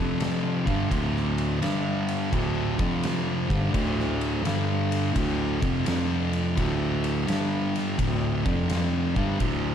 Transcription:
Already playing: F2 C3 F3
0.20 snare, ride
0.67 G2 D3 G3 D4 A4 D5, kick, ride
0.91 D2 A2 D3, kick, ride
1.16 snare
1.38 ride
1.61 G2 D3 G3, snare, ride
2.08 ride
2.31 D2 A2 D3, kick, ride
2.79 F2 C3 F3, kick, ride
3.03 snare, ride
3.49 G2 D3 G3 D4 A4 D5, kick, ride
3.73 D2 A2 D3, kick, ride
4.00 snare
4.21 ride
4.44 G2 D3 G3, snare, ride
4.92 ride
5.13 D2 A2 D3, kick, ride
5.61 F2 C3 F3, kick, ride
5.85 F2 C3 F3, snare, ride
6.33 ride
6.56 D2 A2 D3 D4 A4, kick, ride
7.04 ride
7.27 G2 D3 G3, snare, ride
7.76 snare, ride
7.98 D2 A2 D3, kick, ride
8.44 F2 C3 F3, kick, ride
8.70 snare, ride
9.15 G2 D3 G3 D4 A4 D5, kick, ride
9.39 D2 A2 D3, kick, ride

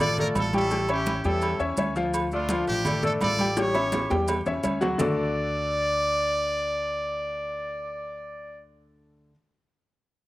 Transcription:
Already playing: A1
0.00 A3 F4 A4 D5, cowbell, high conga, low conga, maracas
0.18 A3 A4 A#4 D5, cowbell, high conga, low conga, maracas
0.35 A1 A4, cowbell, high conga, low timbale, low agogo, maracas
0.53 G3 C#4 E4 G4 A4 G5, cowbell, high conga, low agogo, maracas
0.71 G3 G4 G5, cowbell, high conga, maracas
0.88 C#4 E4 G4 C#5 E5, high conga, low agogo, maracas
1.06 cowbell, high conga, low agogo, maracas
1.24 E2 G3 C#4 E4 G4 A4 G5, high conga, maracas
1.41 cowbell, high conga, low agogo, maracas
1.60 E2 C#4 C#5 E5, high conga, maracas
1.77 D2 C#4 C#5 E5, cowbell, high conga, low agogo, maracas
1.96 F3 F4 F5, cowbell, maracas
2.14 cowbell, high conga, low agogo, maracas
2.32 A3 D4 F4 A4 D5, high conga, maracas
2.49 F3 F4 F5, cowbell, high conga, low agogo, maracas
2.67 A1 D4 G4, high conga, maracas
2.85 A3 A4 D5, cowbell, high conga, low conga, low agogo, maracas
3.03 A3 A4 D5, cowbell, high conga, low conga, maracas
3.21 A1 F4 A4 D5, cowbell, high conga, low timbale, low agogo, maracas
3.39 G3 G4 G5, cowbell, high conga, low agogo, maracas
3.57 G3 E4 G4 C#5 G5, cowbell, high bongo, high conga, high timbale, maracas
3.74 C#4 C#5 E5, high bongo, high conga, low agogo, maracas
3.92 cowbell, high bongo, high conga, low timbale, low agogo, maracas
4.10 E2 G3 G4 G5, high conga, low timbale, maracas
4.28 cowbell, low bongo, high conga, low timbale, low agogo, maracas
4.46 E2 C#4 C#5 E5, low bongo, high conga, maracas
4.63 D2 C#4 C#5 E5, cowbell, high conga, low agogo, maracas
4.81 F#3 F#4 F#5, cowbell, low bongo, low timbale, maracas
4.98 D2 D3 A3 D4 F#4 A4 D5, low bongo, low conga, low timbale, maracas

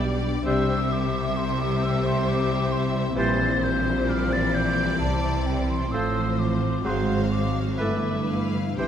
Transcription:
Already playing: B1 B2 G3 B3 D4 G4 D5
0.02 D4 D5
0.24 B3
0.45 C2 C3 G3 C4 G4 C5 E5 E6
0.68 G3
0.92 D6
1.13 G3
1.35 G3 C4 G4 C5 C6
1.58 G3 D6
1.80 A3 E6
2.03 G3 C6
2.26 G4 D6
2.71 G4 C6
2.94 G3
3.16 A#1 A#2 E3 G3 E4 G4 C5 A6
3.40 E3
3.63 E4 G6
3.86 E3
4.08 G3 D5 F6
4.32 E3 A6
4.55 F3 G6
4.79 E3
5.00 C2 C3 E4 A5
5.24 E3
5.46 C4 G5
5.70 E3 C6
5.92 A1 A2 F3 C4 F4 A4 C5 E6
6.16 A3
6.38 F3 F4 D6
6.63 A3
6.85 G#1 G#2 F#3 G#3 F#4 G#4 C5 F5 C6
7.09 F#3
7.32 F#4 D6
7.56 F#3
7.78 G1 G2 E3 A3 B3 E4 A4 B4 E5 D6
8.05 D3
8.28 E4 F5
8.54 D3
8.77 C2 C3 E3 G3 C4 E4 G4 C5 G5 D6

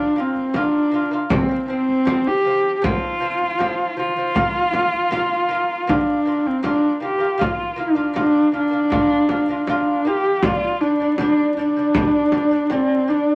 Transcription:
Already playing: D4
0.16 A#3 F4
0.21 C4
0.36 frame drum
0.54 A#3 F4, frame drum
0.58 D4
0.91 A#3 F4
1.11 A#3 F4
1.30 F3 C4, frame drum
1.49 F3 C4
1.68 F3 C4
1.89 frame drum
2.05 F3 C4, frame drum
2.27 G4
2.45 F3 C4
2.76 G4
2.82 F3 C4 F4, frame drum
3.20 F3 C4
3.42 frame drum
3.59 F3 C4, frame drum
3.97 F3 C4 F4
4.16 F3 C4
4.35 A#3 F4, frame drum
4.53 A#3 F4
4.72 A#3 F4, frame drum
4.93 frame drum
5.11 A#3 F4, frame drum
5.49 A#3 F4, frame drum
5.87 A#3 D4 F4, frame drum
6.25 A#3 F4
6.46 C4, frame drum
6.63 A#3 D4 F4, frame drum
7.00 A#3 F4
7.05 G4
7.18 A#3 F4
7.38 A#3 F4, frame drum
7.76 A#3 D4 F4
7.95 A#3 F4, frame drum
8.14 A#3 F4, frame drum
8.20 D4
8.52 A#3 F4, frame drum
8.57 D4
8.71 A#3 F4
8.90 A#3 F4, frame drum
9.29 A#3 F4, frame drum
9.48 A#3 F4, frame drum
9.67 A#3 D4 F4, frame drum
10.05 A#3 F4 G4
10.43 G3 D4 F4, frame drum
10.81 G3 D4
10.99 G3 D4, frame drum
11.18 G3 D4, frame drum
11.57 G3 D4, frame drum
11.76 G3 D4
11.94 G3 D4, frame drum
12.32 G3 D4, frame drum
12.51 G3 D4, frame drum
12.70 G3 C4 D4, frame drum
13.08 G3 D4

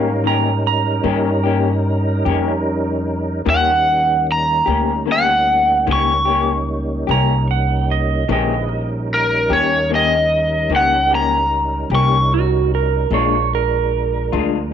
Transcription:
Already playing: G#2 G3 C#4 D#4 A#4 F5
0.24 D#3 A#3 C#4 G4 A#5
0.67 A#5
1.04 G2 D#3 A#3 C#4 G4
1.44 A#3 C#4 G4
2.25 F2 A#3 C#4 G4
3.45 D#2 D#3 G3 A#3 C#4 D#4 G4
3.50 F#5
4.32 A#5
4.66 D2 A#3 C#4 G4
5.06 D#3 A#3 C#4 G4
5.12 F#5
5.87 C#2 D#3 A#3 C#4 G4
5.92 C#6
6.25 A#3 C#4 G4
7.07 C2 A#3 C#4 G4 A#5
7.51 F#5
7.91 D#5
8.28 A#1 D3 D#3 G#3 A#3 C#4 E4 G4 B4
8.32 D#5
8.69 G3 C#4 D#4 A#4
9.14 A#4
9.50 D#2 A#3 C#4 G4 C#5
9.90 D#3 A#3 C#4 G4
9.95 D#5
10.69 C#2 D#3 A#3 C#4 G4
10.76 F#5
11.11 A#3 C#4 G4
11.15 A#5
11.90 C2 C#4 G4
11.95 A#3 C#6
12.34 F#4
12.75 A#4
13.10 A#1 A#2 F3 G#3 D4 F4 A#4 C#5
13.55 A#4
14.32 D2 G#3 D4 F4

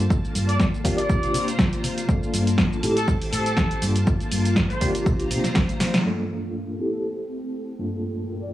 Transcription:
Already playing: A#3 D4 F4 A4 A5
0.10 G1, kick, shaker
0.25 shaker
0.35 G2, open hi-hat, tambourine, shaker
0.49 D5, closed hi-hat, tambourine, shaker
0.60 G1 D5, kick, snare, tambourine, shaker
0.74 shaker
0.84 C3 A#3 D4 F4 G4 C5 A#5, kick, open hi-hat, tambourine, shaker
0.98 D5, closed hi-hat, tambourine, shaker
1.09 C2, kick, tambourine, shaker
1.23 closed hi-hat, shaker
1.34 C3, open hi-hat, tambourine, shaker
1.48 closed hi-hat, tambourine, shaker
1.59 C2, kick, snare, tambourine, shaker
1.73 closed hi-hat, shaker
1.84 C3, open hi-hat, tambourine, shaker
1.98 closed hi-hat, tambourine, shaker
2.08 G1 A#3 D4 F4 A4 A5, kick, shaker
2.23 shaker
2.33 G2, open hi-hat, tambourine, shaker
2.47 closed hi-hat, tambourine, shaker
2.58 G1, kick, snare, tambourine, shaker
2.73 shaker
2.82 A2 C4 E4 G4 A4 C5, open hi-hat, tambourine, shaker
2.96 A4, closed hi-hat, tambourine, shaker
3.07 A1, kick, tambourine, shaker
3.22 open hi-hat, shaker
3.33 A2 A4, open hi-hat, tambourine, shaker
3.46 closed hi-hat, tambourine, shaker
3.57 A1, kick, snare, shaker
3.71 closed hi-hat, shaker
3.82 G2 A#3 D4 F4 A4, open hi-hat, tambourine, shaker
3.96 closed hi-hat, tambourine, shaker
4.06 G1, kick, tambourine, shaker
4.20 closed hi-hat, shaker
4.32 G2, open hi-hat, tambourine, shaker
4.45 closed hi-hat, tambourine, shaker
4.56 G1, kick, snare, shaker
4.70 C5, closed hi-hat, shaker
4.80 C3 A#3 D4 F4 G4 C5 A#5, kick, open hi-hat, tambourine, shaker
4.95 closed hi-hat, tambourine, shaker
5.06 C2, kick, tambourine, shaker
5.20 closed hi-hat, shaker
5.31 C3, open hi-hat, tambourine, shaker
5.44 muted fingered electric bass stroke, snare, closed hi-hat, tambourine, shaker
5.55 C2, kick, snare, open hi-hat, shaker
5.69 closed hi-hat, shaker
5.80 C3, snare, open hi-hat, tambourine, shaker
5.94 snare, closed hi-hat, tambourine, shaker
6.04 G2 A#3 D4 F4 A4 G5
6.79 C4 E4 G4 A4 G5
6.93 A4
7.78 G2 A#3 D4 F4 A4 G5
8.42 D5

